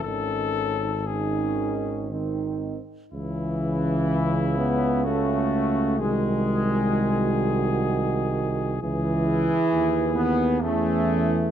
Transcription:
<<
  \new Staff \with { instrumentName = "Cornet" } { \time 3/4 \key cis \minor \tempo 4 = 63 a'4 gis'4 r4 | e'2 fis'4 | gis'2. | gis'2 gis'4 | }
  \new Staff \with { instrumentName = "French horn section" } { \time 3/4 \key cis \minor dis'4 dis'4 dis'8 r8 | cis'2. | fis'2. | e'2 cis'4 | }
  \new Staff \with { instrumentName = "Trombone section" } { \time 3/4 \key cis \minor cis'4 cis'4 bis8 r8 | e4. b8 a4 | gis2~ gis8 r8 | e4. b8 a4 | }
  \new Staff \with { instrumentName = "Euphonium" } { \clef bass \time 3/4 \key cis \minor dis8 r8 dis4 dis8 r8 | cis2. | dis2. | e2 e4 | }
  \new Staff \with { instrumentName = "Tuba" } { \clef bass \time 3/4 \key cis \minor gis,,2~ gis,,8 r8 | cis,2. | bis,,2. | cis,4 dis,4 e,4 | }
>>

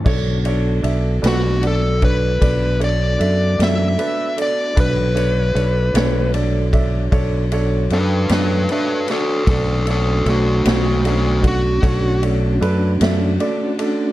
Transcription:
<<
  \new Staff \with { instrumentName = "Upright piano" } { \time 12/8 \key b \minor \tempo 4. = 51 <d' a' cis''>8 <d' a' cis''>8 <d' a' e''>8 <d' a' b'>8 <d' a' d''>8 <d' a' cis''>8 <d' a' d''>8 <d' a' cis''>8 <d' a' e''>8 <d' a' d''>8 <d' a' b'>8 <d' a' d''>8 | <d' a' b'>8 <d' a' cis''>8 <d' a' cis''>8 <d' a' cis''>8 <d' a' d''>8 <d' a' e''>8 <d' a' cis''>8 <d' a' cis''>8 <d' a' cis''>8 <d' a' cis''>8 <d' a' e''>8 <d' a' cis''>8 | <d' a' d''>8 <d' a' cis''>8 <d' a' cis''>8 <d' a' cis''>8 <d' a' cis''>8 <d' a' d''>8 <d' a' cis''>8 <d' a' cis''>8 <d' a' b'>8 <d' a' e''>8 <d' a' d''>8 <d' a' d''>8 | }
  \new Staff \with { instrumentName = "Lead electric guitar" } { \time 12/8 \key b \minor r4. fis'8 a'8 b'4 d''4 e''4 d''8 | b'2 r2 <d' b'>8 <d' b'>8 <d' b'>8 <fis' a'>8 | <fis' a'>8 <fis' a'>8 <a fis'>8 <a fis'>8 <a fis'>8 fis'4 r2 r8 | }
  \new Staff \with { instrumentName = "Tonewheel organ" } { \time 12/8 \key b \minor <b d' fis' a'>1. | <d' fis' a' cis''>1. | <a cis' d' fis'>1. | }
  \new Staff \with { instrumentName = "Fingered electric bass" } { \clef bass \time 12/8 \key b \minor b,,4 b,,8 b,,4. b,,4 fis,8 fis,8 r4 | b,,4 b,,8 b,,4. b,,4 fis,8 fis,8 r4 | b,,4 b,,8 b,,4. b,,4 fis,8 fis,8 r4 | }
  \new DrumStaff \with { instrumentName = "Drums" } \drummode { \time 12/8 <cymc bd>8 cymr8 cymr8 <cymr sn>8 cymr8 <bd cymr>8 <bd cymr sn>8 cymr8 cymr8 <cymr sn>8 cymr8 cymr8 | <bd cymr>8 cymr8 cymr8 <cymr sn>8 cymr8 <bd cymr>8 <bd cymr>8 cymr8 cymr8 <cymr sn>8 cymr8 <cymr sn>8 | <bd cymr>8 cymr8 cymr8 <cymr sn>8 cymr8 <bd cymr>8 <bd cymr>8 cymr8 cymr8 <cymr sn>8 cymr8 cymr8 | }
>>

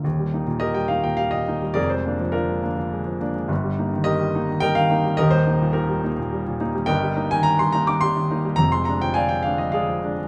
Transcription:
<<
  \new Staff \with { instrumentName = "Grand piano" } { \time 3/4 \key ees \major \tempo 4 = 105 r4 <g' bes' ees''>16 g''16 f''16 g''16 f''16 ees''8. | <aes' bes' d''>16 c''8. <d' f' bes'>4. r8 | r4 <g' bes' ees''>4 <bes' ees'' g''>16 f''8. | <g' bes' ees''>16 c''8. <ees' g' bes'>4. r8 |
<bes' ees'' g''>8. aes''16 bes''16 c'''16 bes''16 d'''16 c'''4 | bes''16 c'''16 bes''16 g''16 <d'' f'' aes''>16 g''16 f''16 ees''16 <aes' d'' f''>4 | }
  \new Staff \with { instrumentName = "Grand piano" } { \clef bass \time 3/4 \key ees \major <ees,, ees,>16 g16 <bes ees'>16 bes,8 g16 <bes ees'>16 bes,16 g16 bes,16 <bes ees'>16 g16 | <f,, f,>16 aes16 <bes d'>16 f8 aes16 <bes d'>16 f16 aes16 f16 <bes d'>16 aes16 | <g,, g,>16 g16 <bes ees'>16 ees8 g16 <bes ees'>16 ees16 g16 ees16 <bes ees'>16 g16 | <ees,, ees,>16 g16 <bes ees'>16 bes,8 g16 <bes ees'>16 bes,16 g16 bes,16 <bes ees'>16 g16 |
<g,, g,>16 g16 <bes ees'>16 ees8 g16 <bes ees'>16 ees16 g16 ees16 <bes ees'>16 g16 | <f,, f,>16 aes16 <aes d'>16 f8 aes16 <aes d'>16 f16 aes16 f16 <aes d'>16 aes16 | }
>>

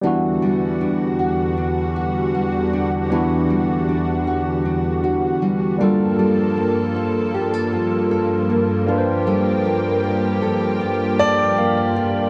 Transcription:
<<
  \new Staff \with { instrumentName = "Grand piano" } { \time 4/4 \key e \phrygian \tempo 4 = 78 r1 | r1 | r1 | r2 r8 d''4. | }
  \new Staff \with { instrumentName = "Nylon-string guitar" } { \time 4/4 \key e \phrygian <e fis'>8 g8 d'8 fis'8 d'8 fis'8 g8 d'8 | <e fis'>8 g8 d'8 fis'8 d'8 fis'8 g8 g8 | <g a'>8 bes8 f'8 g'16 a'16 f'8 a'8 bes8 f'8 | <g a'>8 bes8 f'8 a'8 f'8 a'8 bes8 f'8 | }
  \new Staff \with { instrumentName = "Tine electric piano" } { \time 4/4 \key e \phrygian << { r1 | r1 | r1 | r2 r8 a''16 g''16 f''16 d''8. | } \\ { <g b d' e' fis'>1 | <g b d' e' fis'>2.~ <g b d' e' fis'>8 <g bes d' f' a'>8~ | <g bes d' f' a'>2.~ <g bes d' f' a'>8 <g bes d' f' b' c''>8~ | <g bes d' f' b' c''>2.~ <g bes d' f' b' c''>8 r8 | } >> }
  \new Staff \with { instrumentName = "Analog synth pad" } { \clef bass \time 4/4 \key e \phrygian << { fis'1~ | fis'2.~ fis'8 a'8~ | a'2.~ a'8 g'8~ | g'1 | } \\ { <e, d g>1~ | <e, d g>2.~ <e, d g>8 <g, f bes>8~ | <g, f bes>1~ | <g, f bes>1 | } >> }
>>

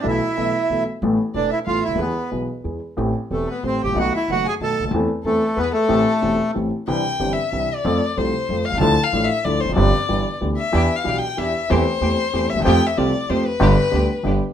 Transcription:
<<
  \new Staff \with { instrumentName = "Violin" } { \time 3/4 \key a \minor \tempo 4 = 186 e''2~ e''8 r8 | r4 d''8 e''8 f''8 e''8 | b'4 r2 | r4 a'8 b'8 c''8 g''8 |
fis''8 e''8 fis''8 gis''8 a''8. r16 | r4 a'4 b'8 a'8~ | a'2 r4 | \key c \major g''4~ \tuplet 3/2 { g''8 e''4~ e''4 d''8~ } |
d''4 c''4. f''8 | \tuplet 3/2 { a''4 f''8~ f''8 e''4 } d''8 c''8 | d''2 r8 e''8~ | \tuplet 3/2 { e''4 f''8~ f''8 g''4 } e''4 |
c''2~ c''8 e''8 | \tuplet 3/2 { g''4 e''8 } d''4 c''8 b'8~ | b'2 r4 | }
  \new Staff \with { instrumentName = "Bandoneon" } { \time 3/4 \key a \minor e'2~ e'8 r8 | r4 d'8 e'8 f'8 e'8 | b4 r2 | r4 a8 b8 c'8 g'8 |
fis'8 e'8 fis'8 gis'8 a'8. r16 | r4 a4 b8 a8~ | a2 r4 | \key c \major r2. |
r2. | r2. | r2. | r2. |
r2. | r2. | r2. | }
  \new Staff \with { instrumentName = "String section" } { \time 3/4 \key a \minor r2. | r2. | r2. | r2. |
r2. | r2. | r2. | \key c \major r2. |
r2. | r2. | r2. | <d' e' g'>8 r8 <d' e' g'>8 r8 <d' e' g'>8 r8 |
<a c' g'>8 r8 <a c' g'>8 r8 <a c' g'>8 r8 | <a f' g'>8 r8 <a f' g'>8 r8 <a f' g'>8 r8 | <b d' g'>8 r8 <b d' g'>8 r8 <b d' g'>8 r8 | }
  \new Staff \with { instrumentName = "Grand piano" } { \clef bass \time 3/4 \key a \minor <b,, b, e a b a'>8 r8 <b,, b, e a b a'>8 r8 <b,, b, e a b a'>8 r8 | <a,, a, e a b a'>8 r8 <e,, e, e a b a'>8 r8 <a,, a, e a b a'>8 r32 cis,32 d,32 dis,32 | <e, e gis b gis'>8 r8 <b,, b, e gis b gis'>8 r8 <e, e gis b gis'>8 r8 | <a,, a, e a c' g'>8 r8 <e,, e, e a c' g'>8 r8 <a,, a, e a c' g'>8 r32 gis,,32 a,,32 bes,,32 |
<b,, b, dis a b fis'>8 r8 <fis,, fis, dis a b fis'>8 r8 <b,, b, dis a b fis'>8 r32 cis,32 d,32 dis,32 | <e, e a c' a'>8 r8 <e, e a c' a'>8 r8 <e, e gis b gis'>8 r8 | <a,, a, e a c' g'>8 r8 <e,, e, e a c' g'>8 r8 <a,, a, e a c' g'>8 r8 | \key c \major <c, c e c' d' g'>8 r8 <g,, g, e c' d' g'>8 r8 <c, c e c' d' g'>8 r8 |
<f, f a c' a'>8 r8 <c, c f a c' a'>8 r8 <f, f a c' a'>8 r32 b,,32 c,32 des,32 | <d, d f d' e' a'>8 r8 <a,, a, f d' e' a'>8 r8 <d, d f d' e' a'>8 r32 e,32 f,32 fis,32 | <g,, g, f c' d' g'>8 r8 <g,, g, e b d' g'>8 r8 <d, d e b d' g'>8 r8 | <e, e b d' g'>8 r8 <b,, b, e b d' g'>8 r8 <e, e b d' g'>8 r8 |
<e, e a c' g'>8 r8 <e, e a c' g'>8 r8 <e, e a c' g'>8 r32 d,32 ees,32 e,32 | <f, f a c' g'>8 r8 <c, c f a c' g'>8 r8 <f, f a c' g'>8 r8 | <g,, g, d g b g'>8 r8 <d, d g b g'>8 r8 <g,, g, d g b g'>8 r8 | }
  \new Staff \with { instrumentName = "Upright bass" } { \clef bass \time 3/4 \key a \minor b,,16. r8 r32 b,,16. r8 r32 b,,16. r8 r32 | a,,16. r8 r32 e,,16. r8 r32 a,,16. r16 cis,32 d,32 dis,32 | e,16. r8 r32 b,,16. r8 r32 e,16. r8 r32 | a,,16. r8 r32 e,,16. r8 r32 a,,16. r16 gis,,32 a,,32 bes,,32 |
b,,16. r8 r32 fis,,16. r8 r32 b,,16. r16 cis,32 d,32 dis,32 | e,16. r8 r32 e,16. r8 r32 e,16. r8 r32 | a,,16. r8 r32 e,,16. r8 r32 a,,16. r8 r32 | \key c \major c,16. r8 r32 g,,16. r8 r32 c,16. r8 r32 |
f,16. r8 r32 c,16. r8 r32 f,16. r16 b,,32 c,32 des,32 | d,16. r8 r32 a,,16. r8 r32 d,16. r16 e,,32 f,,32 fis,,32 | g,,16. r8 r32 g,,16. r8 r32 d,16. r8 r32 | e,16. r8 r32 b,,16. r8 r32 e,16. r8 r32 |
e,16. r8 r32 e,16. r8 r32 e,16. r16 d,32 ees,32 e,32 | f,16. r8 r32 c,16. r8 r32 f,16. r8 r32 | g,,16. r8 r32 d,16. r8 r32 g,,16. r8 r32 | }
>>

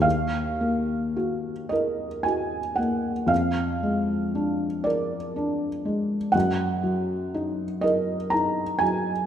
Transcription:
\new Staff \with { instrumentName = "Felt piano" } { \time 6/8 \key ees \minor \tempo 4. = 39 << { f''4. ees''8 aes''8 ges''8 | f''4. d''4. | ges''4. ees''8 bes''8 aes''8 | } \\ { ees,8 bes8 ges'8 bes'8 ges'8 bes8 | f,8 aes8 d'8 bes'8 d'8 aes8 | ges,8 ges8 ees'8 bes'8 ees'8 ges8 | } >> }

